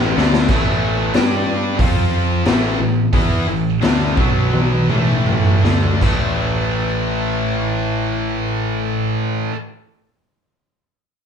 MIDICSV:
0, 0, Header, 1, 4, 480
1, 0, Start_track
1, 0, Key_signature, 0, "minor"
1, 0, Tempo, 654308
1, 360, Time_signature, 4, 2, 24, 8
1, 1805, Tempo, 692841
1, 3245, Tempo, 742574
1, 4205, Tempo, 768246
1, 7472, End_track
2, 0, Start_track
2, 0, Title_t, "Distorted electric guitar"
2, 0, Program_c, 0, 30
2, 0, Note_on_c, 0, 45, 85
2, 0, Note_on_c, 0, 52, 81
2, 0, Note_on_c, 0, 57, 93
2, 114, Note_off_c, 0, 45, 0
2, 116, Note_off_c, 0, 57, 0
2, 117, Note_off_c, 0, 52, 0
2, 121, Note_on_c, 0, 50, 88
2, 125, Note_on_c, 0, 57, 97
2, 128, Note_on_c, 0, 62, 108
2, 352, Note_off_c, 0, 50, 0
2, 354, Note_off_c, 0, 57, 0
2, 356, Note_off_c, 0, 62, 0
2, 362, Note_on_c, 0, 45, 92
2, 366, Note_on_c, 0, 52, 98
2, 367, Note_on_c, 0, 57, 109
2, 830, Note_off_c, 0, 45, 0
2, 831, Note_off_c, 0, 52, 0
2, 832, Note_off_c, 0, 57, 0
2, 838, Note_on_c, 0, 55, 84
2, 841, Note_on_c, 0, 62, 98
2, 846, Note_on_c, 0, 67, 100
2, 1310, Note_off_c, 0, 55, 0
2, 1311, Note_off_c, 0, 62, 0
2, 1312, Note_on_c, 0, 53, 92
2, 1314, Note_off_c, 0, 67, 0
2, 1320, Note_on_c, 0, 60, 83
2, 1321, Note_on_c, 0, 65, 99
2, 1794, Note_off_c, 0, 53, 0
2, 1797, Note_on_c, 0, 45, 97
2, 1799, Note_off_c, 0, 60, 0
2, 1799, Note_off_c, 0, 65, 0
2, 1802, Note_on_c, 0, 52, 94
2, 1807, Note_on_c, 0, 57, 103
2, 2022, Note_off_c, 0, 52, 0
2, 2023, Note_off_c, 0, 45, 0
2, 2031, Note_on_c, 0, 45, 64
2, 2031, Note_on_c, 0, 52, 75
2, 2032, Note_off_c, 0, 57, 0
2, 2222, Note_off_c, 0, 52, 0
2, 2223, Note_off_c, 0, 45, 0
2, 2271, Note_on_c, 0, 52, 90
2, 2274, Note_on_c, 0, 59, 98
2, 2279, Note_on_c, 0, 64, 101
2, 2503, Note_off_c, 0, 52, 0
2, 2505, Note_off_c, 0, 59, 0
2, 2507, Note_off_c, 0, 64, 0
2, 2512, Note_on_c, 0, 45, 57
2, 2515, Note_on_c, 0, 52, 69
2, 2705, Note_off_c, 0, 45, 0
2, 2706, Note_off_c, 0, 52, 0
2, 2739, Note_on_c, 0, 50, 94
2, 2746, Note_on_c, 0, 57, 94
2, 2747, Note_on_c, 0, 62, 107
2, 2988, Note_off_c, 0, 50, 0
2, 2988, Note_on_c, 0, 47, 86
2, 2989, Note_off_c, 0, 57, 0
2, 2989, Note_on_c, 0, 54, 84
2, 2997, Note_off_c, 0, 62, 0
2, 2997, Note_on_c, 0, 59, 84
2, 3468, Note_off_c, 0, 47, 0
2, 3468, Note_off_c, 0, 54, 0
2, 3472, Note_off_c, 0, 59, 0
2, 3474, Note_on_c, 0, 45, 78
2, 3477, Note_on_c, 0, 52, 83
2, 3482, Note_on_c, 0, 57, 90
2, 3943, Note_off_c, 0, 45, 0
2, 3944, Note_off_c, 0, 57, 0
2, 3946, Note_on_c, 0, 50, 87
2, 3949, Note_off_c, 0, 52, 0
2, 3952, Note_on_c, 0, 57, 99
2, 3953, Note_on_c, 0, 62, 92
2, 4190, Note_off_c, 0, 50, 0
2, 4192, Note_on_c, 0, 45, 81
2, 4194, Note_off_c, 0, 57, 0
2, 4194, Note_off_c, 0, 62, 0
2, 4205, Note_on_c, 0, 52, 89
2, 4216, Note_on_c, 0, 57, 92
2, 6380, Note_off_c, 0, 45, 0
2, 6392, Note_off_c, 0, 52, 0
2, 6403, Note_off_c, 0, 57, 0
2, 7472, End_track
3, 0, Start_track
3, 0, Title_t, "Picked electric bass"
3, 0, Program_c, 1, 34
3, 0, Note_on_c, 1, 33, 97
3, 94, Note_off_c, 1, 33, 0
3, 127, Note_on_c, 1, 38, 92
3, 346, Note_off_c, 1, 38, 0
3, 360, Note_on_c, 1, 33, 99
3, 806, Note_off_c, 1, 33, 0
3, 840, Note_on_c, 1, 43, 82
3, 1289, Note_off_c, 1, 43, 0
3, 1317, Note_on_c, 1, 41, 90
3, 1775, Note_off_c, 1, 41, 0
3, 1807, Note_on_c, 1, 33, 89
3, 2023, Note_off_c, 1, 33, 0
3, 2040, Note_on_c, 1, 33, 74
3, 2258, Note_off_c, 1, 33, 0
3, 2270, Note_on_c, 1, 40, 87
3, 2493, Note_off_c, 1, 40, 0
3, 2512, Note_on_c, 1, 33, 71
3, 2736, Note_off_c, 1, 33, 0
3, 2752, Note_on_c, 1, 38, 84
3, 2979, Note_off_c, 1, 38, 0
3, 2995, Note_on_c, 1, 35, 84
3, 3452, Note_off_c, 1, 35, 0
3, 3473, Note_on_c, 1, 33, 85
3, 3930, Note_off_c, 1, 33, 0
3, 3953, Note_on_c, 1, 38, 84
3, 4184, Note_off_c, 1, 38, 0
3, 4201, Note_on_c, 1, 33, 83
3, 6164, Note_off_c, 1, 33, 0
3, 7472, End_track
4, 0, Start_track
4, 0, Title_t, "Drums"
4, 129, Note_on_c, 9, 38, 67
4, 202, Note_off_c, 9, 38, 0
4, 242, Note_on_c, 9, 38, 92
4, 316, Note_off_c, 9, 38, 0
4, 356, Note_on_c, 9, 49, 93
4, 359, Note_on_c, 9, 36, 97
4, 429, Note_off_c, 9, 49, 0
4, 432, Note_off_c, 9, 36, 0
4, 836, Note_on_c, 9, 46, 51
4, 842, Note_on_c, 9, 38, 117
4, 909, Note_off_c, 9, 46, 0
4, 916, Note_off_c, 9, 38, 0
4, 1314, Note_on_c, 9, 36, 109
4, 1315, Note_on_c, 9, 46, 54
4, 1388, Note_off_c, 9, 36, 0
4, 1389, Note_off_c, 9, 46, 0
4, 1800, Note_on_c, 9, 46, 46
4, 1806, Note_on_c, 9, 38, 108
4, 1869, Note_off_c, 9, 46, 0
4, 1875, Note_off_c, 9, 38, 0
4, 2269, Note_on_c, 9, 36, 103
4, 2270, Note_on_c, 9, 46, 47
4, 2338, Note_off_c, 9, 36, 0
4, 2339, Note_off_c, 9, 46, 0
4, 2747, Note_on_c, 9, 46, 48
4, 2754, Note_on_c, 9, 38, 101
4, 2817, Note_off_c, 9, 46, 0
4, 2823, Note_off_c, 9, 38, 0
4, 2992, Note_on_c, 9, 36, 105
4, 3061, Note_off_c, 9, 36, 0
4, 3240, Note_on_c, 9, 48, 61
4, 3305, Note_off_c, 9, 48, 0
4, 3475, Note_on_c, 9, 47, 69
4, 3540, Note_off_c, 9, 47, 0
4, 3711, Note_on_c, 9, 45, 69
4, 3776, Note_off_c, 9, 45, 0
4, 3832, Note_on_c, 9, 45, 73
4, 3897, Note_off_c, 9, 45, 0
4, 3960, Note_on_c, 9, 38, 85
4, 4025, Note_off_c, 9, 38, 0
4, 4077, Note_on_c, 9, 43, 75
4, 4142, Note_off_c, 9, 43, 0
4, 4199, Note_on_c, 9, 36, 92
4, 4203, Note_on_c, 9, 49, 80
4, 4262, Note_off_c, 9, 36, 0
4, 4266, Note_off_c, 9, 49, 0
4, 7472, End_track
0, 0, End_of_file